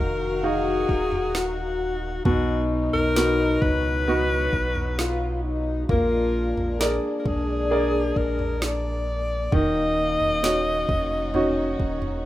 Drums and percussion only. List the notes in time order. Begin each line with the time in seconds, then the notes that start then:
0.89 kick
1.12 floor tom
1.35 snare
2.25 kick, floor tom
2.93 floor tom
3.16 snare
3.62 kick, floor tom
4.53 kick
4.75 floor tom
4.99 snare
5.89 kick, floor tom
6.57 floor tom
6.81 snare
7.26 kick, floor tom
8.16 kick
8.39 floor tom
8.62 snare
9.52 kick, floor tom
10.20 floor tom
10.44 snare
10.89 kick, floor tom
11.34 floor tom
11.80 kick
12.02 floor tom